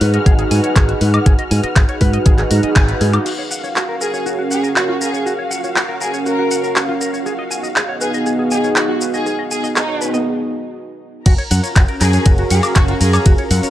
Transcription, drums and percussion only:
0.01 open hi-hat medium
0.14 closed hi-hat soft
0.26 kick loud
0.26 closed hi-hat medium
0.39 closed hi-hat soft
0.51 open hi-hat loud
0.64 closed hi-hat soft
0.76 kick loud
0.76 clap loud
0.76 closed hi-hat loud
0.89 closed hi-hat soft
1.01 open hi-hat medium
1.14 closed hi-hat soft
1.14 high woodblock medium
1.26 kick loud
1.26 closed hi-hat medium
1.39 closed hi-hat soft
1.51 open hi-hat loud
1.63 closed hi-hat soft
1.76 kick loud
1.76 clap loud
1.76 closed hi-hat medium
1.89 closed hi-hat soft
2.01 kick medium
2.01 open hi-hat medium
2.13 closed hi-hat soft
2.26 kick loud
2.26 closed hi-hat medium
2.38 clap soft
2.38 closed hi-hat soft
2.51 open hi-hat loud
2.63 closed hi-hat soft
2.76 kick loud
2.76 clap loud
2.76 closed hi-hat loud
2.89 closed hi-hat soft
3.01 open hi-hat medium
3.13 closed hi-hat soft
3.13 high woodblock medium
3.26 crash medium
3.26 shaker soft
3.51 shaker medium
3.64 shaker soft
3.76 clap loud
3.76 shaker soft
4.01 shaker medium
4.14 shaker soft
4.26 shaker soft
4.51 shaker medium
4.64 shaker soft
4.76 clap loud
4.76 shaker soft
5.01 shaker medium
5.14 shaker soft
5.27 shaker soft
5.51 shaker medium
5.64 shaker soft
5.76 clap loud
5.76 shaker soft
6.01 shaker medium
6.14 shaker soft
6.26 shaker soft
6.51 shaker medium
6.64 shaker soft
6.76 clap loud
6.76 shaker soft
7.01 shaker medium
7.14 shaker soft
7.26 shaker soft
7.51 shaker medium
7.64 shaker soft
7.76 clap loud
7.76 shaker soft
8.01 shaker medium
8.14 shaker soft
8.26 shaker soft
8.51 shaker medium
8.64 shaker soft
8.76 clap loud
8.76 shaker soft
9.01 shaker medium
9.14 shaker soft
9.26 shaker soft
9.51 shaker medium
9.64 shaker soft
9.76 clap loud
9.76 shaker soft
10.02 shaker medium
10.14 shaker soft
11.26 kick loud
11.26 closed hi-hat loud
11.26 ride medium
11.26 crash loud
11.26 shaker soft
11.39 closed hi-hat soft
11.51 open hi-hat loud
11.51 ride medium
11.51 shaker medium
11.64 closed hi-hat soft
11.64 shaker soft
11.76 kick loud
11.76 clap loud
11.76 closed hi-hat medium
11.76 ride medium
11.76 shaker soft
11.88 closed hi-hat soft
12.01 clap soft
12.01 open hi-hat medium
12.01 ride medium
12.01 shaker medium
12.13 closed hi-hat soft
12.13 shaker soft
12.26 kick loud
12.26 closed hi-hat loud
12.26 ride medium
12.26 shaker soft
12.38 closed hi-hat soft
12.50 open hi-hat loud
12.50 ride medium
12.50 shaker medium
12.63 closed hi-hat soft
12.63 high woodblock medium
12.63 shaker soft
12.76 kick loud
12.76 clap loud
12.76 closed hi-hat loud
12.76 ride medium
12.76 shaker soft
12.88 closed hi-hat soft
13.01 open hi-hat medium
13.01 ride medium
13.01 shaker medium
13.13 closed hi-hat soft
13.13 high woodblock medium
13.13 shaker soft
13.26 kick loud
13.26 closed hi-hat medium
13.26 ride medium
13.26 shaker soft
13.38 closed hi-hat soft
13.51 open hi-hat loud
13.51 ride medium
13.51 shaker medium
13.63 closed hi-hat soft
13.63 shaker soft

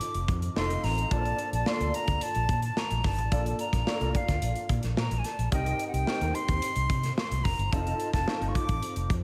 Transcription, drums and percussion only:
0.01 closed hi-hat medium
0.14 closed hi-hat medium
0.28 kick medium
0.28 closed hi-hat medium
0.42 closed hi-hat medium
0.56 snare loud
0.70 closed hi-hat medium
0.84 snare soft
0.84 open hi-hat medium
0.98 closed hi-hat soft
1.11 kick loud
1.11 closed hi-hat medium
1.25 closed hi-hat soft
1.39 closed hi-hat medium
1.53 closed hi-hat medium
1.66 snare loud
1.80 closed hi-hat soft
1.94 closed hi-hat medium
2.08 kick medium
2.08 closed hi-hat soft
2.21 closed hi-hat medium
2.35 closed hi-hat soft
2.49 kick medium
2.49 closed hi-hat medium
2.62 closed hi-hat medium
2.77 snare loud
2.90 closed hi-hat medium
3.04 kick medium
3.04 snare soft
3.04 open hi-hat medium
3.18 closed hi-hat soft
3.32 kick loud
3.32 closed hi-hat medium
3.46 closed hi-hat medium
3.59 closed hi-hat medium
3.73 kick medium
3.73 snare soft
3.73 closed hi-hat medium
3.87 snare loud
4.01 closed hi-hat soft
4.15 kick medium
4.15 closed hi-hat medium
4.28 kick medium
4.28 snare soft
4.28 closed hi-hat medium
4.42 closed hi-hat medium
4.55 closed hi-hat soft
4.69 kick medium
4.69 closed hi-hat medium
4.83 snare soft
4.83 closed hi-hat soft
4.97 snare loud
5.11 closed hi-hat medium
5.24 snare soft
5.24 closed hi-hat medium
5.39 closed hi-hat soft
5.52 kick loud
5.52 closed hi-hat medium
5.66 closed hi-hat medium
5.79 closed hi-hat medium
5.94 closed hi-hat medium
6.07 snare loud
6.21 closed hi-hat soft
6.35 closed hi-hat medium
6.48 kick medium
6.48 closed hi-hat medium
6.62 closed hi-hat medium
6.76 closed hi-hat soft
6.90 kick medium
6.90 closed hi-hat medium
7.03 snare soft
7.03 closed hi-hat medium
7.18 snare loud
7.31 closed hi-hat soft
7.45 kick medium
7.45 snare soft
7.45 open hi-hat medium
7.59 closed hi-hat soft
7.73 kick loud
7.73 closed hi-hat medium
7.87 closed hi-hat medium
8.00 closed hi-hat medium
8.13 kick medium
8.13 snare soft
8.13 closed hi-hat medium
8.28 snare loud
8.42 closed hi-hat soft
8.55 kick medium
8.55 closed hi-hat medium
8.69 kick medium
8.69 closed hi-hat medium
8.83 closed hi-hat medium
8.96 closed hi-hat medium
9.10 kick medium
9.10 closed hi-hat medium

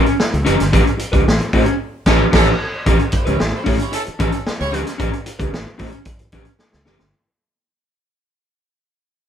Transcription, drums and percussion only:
0.06 closed hi-hat medium
0.20 snare loud
0.34 closed hi-hat soft
0.46 closed hi-hat medium
0.60 snare soft
0.60 closed hi-hat medium
0.73 kick loud
0.73 closed hi-hat medium
0.87 closed hi-hat soft
0.99 closed hi-hat medium
1.13 kick medium
1.13 closed hi-hat medium
1.28 snare loud
1.41 closed hi-hat soft
1.53 kick medium
1.53 open hi-hat medium
1.66 closed hi-hat medium
2.06 kick loud
2.06 snare loud
2.06 crash medium
2.33 kick loud
2.33 snare loud
2.33 crash medium
2.86 kick loud
2.86 closed hi-hat medium
2.99 closed hi-hat soft
3.12 kick medium
3.12 closed hi-hat medium
3.26 closed hi-hat soft
3.40 snare loud
3.66 kick loud
3.66 open hi-hat medium
3.79 closed hi-hat medium
3.93 closed hi-hat loud
4.06 closed hi-hat soft
4.20 kick loud
4.20 closed hi-hat medium
4.32 closed hi-hat soft
4.47 snare loud
4.61 closed hi-hat soft
4.74 closed hi-hat medium
4.87 snare soft
4.87 closed hi-hat medium
5.00 kick loud
5.00 closed hi-hat medium
5.13 closed hi-hat soft
5.26 closed hi-hat medium
5.40 kick medium
5.40 closed hi-hat medium
5.54 snare loud
5.79 kick medium
5.79 open hi-hat medium
5.92 closed hi-hat medium
6.05 kick loud
6.05 closed hi-hat loud
6.19 closed hi-hat soft
6.32 kick medium
6.32 closed hi-hat medium
6.45 closed hi-hat soft
6.59 snare medium
6.73 snare medium
6.86 snare loud
6.99 snare medium

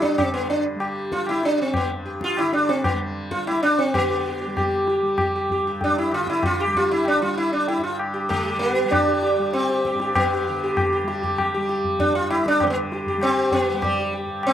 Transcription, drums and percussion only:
0.03 tabla ke medium
0.18 tabla na medium
0.18 tabla ge medium
0.49 tabla te medium
0.80 tabla na medium
1.12 tabla ke medium
1.27 tabla na medium
1.43 tabla te medium
1.58 tabla te medium
1.74 tabla na medium
1.74 tabla ge medium
2.21 tabla ke medium
2.37 tabla na medium
2.53 tabla te medium
2.69 tabla te medium
2.84 tabla na medium
2.84 tabla ge medium
3.31 tabla ke medium
3.47 tabla na medium
3.63 tabla te medium
3.79 tabla te medium
3.94 tabla na loud
3.94 tabla ge loud
4.57 tabla na medium
4.57 tabla ge medium
4.88 tabla te medium
5.18 tabla na medium
5.18 tabla ge medium
5.50 tabla ge medium
5.81 tabla tin medium
5.81 tabla ge medium
6.11 tabla na medium
6.27 tabla ke medium
6.43 tabla na medium
6.43 tabla ge medium
6.75 tabla ge medium
7.05 tabla na medium
7.68 tabla tin medium
7.99 tabla na medium
8.30 tabla na medium
8.30 tabla ge medium
8.61 tabla te medium
8.92 tabla na medium
8.92 tabla ge medium
9.22 tabla te medium
9.53 tabla te medium
9.69 tabla te medium
9.85 tabla ke medium
10.00 tabla te medium
10.15 tabla na loud
10.15 tabla ge loud
10.77 tabla na loud
10.77 tabla ge medium
11.08 tabla te medium
11.23 tabla ge medium
11.38 tabla na medium
11.38 tabla ge medium
11.69 tabla te medium
11.84 tabla ge medium
11.99 tabla tin medium
11.99 tabla ge medium
12.31 tabla na medium
12.46 tabla ke medium
12.60 tabla na medium
12.60 tabla ge medium
12.92 tabla te medium
13.06 tabla ge medium
13.22 tabla na medium
13.52 tabla tin medium
13.52 tabla ge medium
13.82 tabla na loud
13.82 tabla ge loud
14.43 tabla na medium

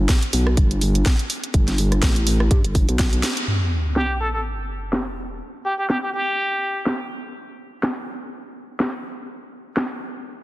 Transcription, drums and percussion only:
0.09 kick loud
0.09 snare loud
0.09 closed hi-hat medium
0.23 closed hi-hat medium
0.33 open hi-hat loud
0.47 cross-stick medium
0.57 kick loud
0.57 closed hi-hat medium
0.71 closed hi-hat medium
0.81 open hi-hat loud
0.95 closed hi-hat soft
1.06 kick loud
1.06 snare loud
1.06 closed hi-hat medium
1.19 closed hi-hat medium
1.30 open hi-hat loud
1.44 closed hi-hat soft
1.54 kick loud
1.54 closed hi-hat medium
1.68 snare soft
1.68 closed hi-hat medium
1.78 open hi-hat loud
1.92 cross-stick medium
1.92 closed hi-hat soft
2.02 kick loud
2.02 snare loud
2.02 closed hi-hat medium
2.16 closed hi-hat medium
2.27 open hi-hat loud
2.40 cross-stick medium
2.51 kick loud
2.51 closed hi-hat medium
2.64 closed hi-hat medium
2.75 kick medium
2.75 open hi-hat loud
2.89 closed hi-hat soft
2.99 kick loud
2.99 snare loud
2.99 closed hi-hat medium
3.13 closed hi-hat medium
3.23 snare medium
3.23 open hi-hat medium
3.37 closed hi-hat soft
3.96 snare loud
4.93 snare loud
5.90 snare loud
6.86 snare loud
7.83 snare loud
8.80 snare loud
9.77 snare loud

